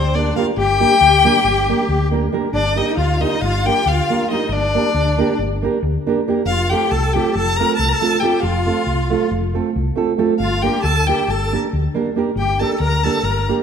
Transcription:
Already playing: D2 C4 C5
0.14 A#3 D4 G4 A#4 D5
0.35 A#3 D4 F4 G4 A#4 F5
0.57 G1 G4 G5
0.80 A#3 D4 G4 A#4
1.01 D2
1.24 A#3 D4 G4 A#4
1.44 G1
1.69 A#3 D4 G4 A#4
1.89 D2
2.11 A#3 D4 G4 A#4
2.32 A#3 D4 G4 A#4
2.52 G1 D4 D5
2.75 A#3 D4 D#4 G4 A#4 D#5
2.97 D2 F4 F5
3.20 A#3 D4 D#4 G4 A#4 D#5
3.41 G1 F4 F5
3.65 A#3 D4 G4 A#4 G5
3.86 D2 F4 F5
4.10 A#3 D4 G4 A#4
4.30 A#3 D4 D#4 G4 A#4 D#5
4.49 G1 D4 D5
4.74 A#3 D4 G4 A#4
4.94 D2
5.18 A#3 D4 G4 A#4
5.39 G1
5.62 A#3 D4 G4 A#4
5.83 D2
6.07 A#3 D4 G4 A#4
6.28 A#3 D4 G4 A#4
6.45 F1 F4 F5
6.69 A3 C4 F4 G4 A4 G5
6.91 C2 A4 A5
7.13 A3 C4 F4 G4 A4 G5
7.35 F1 A4 A5
7.56 A3 A#4 A#5
7.61 C4 F4 A4
7.76 C2 A4 A5
7.89 A#4 A#5
7.93 A4 A5
8.01 A3 C4 F4 A4
8.20 A3 C4 F4 G4 G5
8.24 A4
8.40 F1 F4 F5
8.66 A3 C4 F4 A4
8.87 C2
9.10 A3 C4 F4 A4
9.31 F1
9.54 A3 C4 F4 A4
9.76 C2
9.95 A3 C4 F4 A4
10.18 A3 C4 F4 A4
10.39 G1 F4 F5
10.62 A#3 D4 G4 A#4 G5
10.83 D2 A4 A5
11.07 A#3 D4 G4 A#4 G5
11.28 G1 A4 A5
11.52 A#3 D4 G4 A#4
11.73 D2
11.94 A#3 D4 G4 A#4
12.16 A#3 D4 G4 A#4
12.36 G1 G4 G5
12.60 A#3 D4 G4 A4 A#4 A5
12.80 D2 A#4 A#5
13.03 A#3 D4 G4 A4 A#4 A5
13.23 G1 A#4 A#5
13.49 A#3 D4 G4 A#4

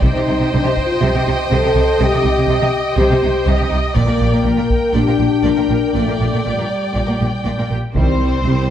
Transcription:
0.02 C2 C3 D#4 C5 D#5 G5, taiko
0.16 C3 G4
0.27 C2 C3 D#4
0.40 C3 G4
0.53 C2 C3 D4 C5
0.64 C3 G4
0.69 D#4
0.77 taiko
0.87 F4
1.02 C2 C3 G4 C5
1.14 C3 G4
1.27 C2 C3 D#4
1.50 C2 C3 A4 C5
1.63 C3 G4
1.75 C2 C3 D#4
1.99 C2 C3 G4 C5 D#5
2.11 C3 G4
2.22 C2 C3 D#4
2.35 C3 G4
2.47 C2 C3 C5 D#5
2.60 C3 G4
2.97 C2 C3 G4 C5
3.10 C3 G4
3.22 C2 C3 D#4
3.45 C2 C3 C5 D#5
3.58 C3 G4
3.69 C2 C3 D#4
3.95 A#1 A#2 A#3 D5 G5, taiko
4.06 A#2 A#4
4.20 A#1 A#2 G4
4.32 A#2 A#4
4.44 A#1 A#2 A#4 D5
4.57 A#2 A#4
4.70 taiko
4.93 A#1 A#2 D4 G4 D5
5.07 A#2 A#4
5.18 A#1 A#2 G4
5.43 A#1 A#2 A#4 D5
5.58 A#2 A#4
5.69 A#1 A#2 G4
5.94 A#1 A#2 A3 D5
6.08 A#2 A#4
6.20 A#1 A#2 G4
6.33 A#2 A#4
6.45 A#1 A#2 G3 D5
6.57 A#2 A#4
6.95 A#1 A#2 D5
7.06 A#2 A#4
7.20 A#1 A#2 G4
7.45 A#1 A#2 D5
7.58 A#2 A#4
7.70 A#1 A#2 G4
7.94 C2 C3 D#3 G3 C4 G4 C5, taiko
8.21 G3 C4
8.45 C2 C3 G3 C4

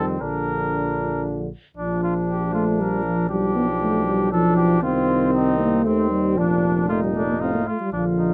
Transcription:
Already playing: F2 D#3 G3 C4
0.20 A#1 D3 F3 D4 A#4
1.77 A#1 F3 D4
2.03 F4
2.28 G4
2.54 A3 F4
2.80 G3 A#4
3.04 F3
3.29 B1 F3 G3 D4 G4
3.56 B3
3.81 A3
4.07 G3
4.31 F3 D4 A4
4.56 G4
4.82 C2 D#3 C4 F4
5.33 D#4
5.60 A#3
5.84 D#2 D#3 A3 C4
6.10 G3
6.37 F1 A#2 F3 D4
6.89 A3 D#4 F4
7.03 G3
7.16 A3 D4
7.28 A#3
7.40 A2 C4 D#4 F4
7.55 A#3
7.67 A3 F4
7.80 G3
7.93 A#1 D3 F3 D4 F4
8.19 D#4

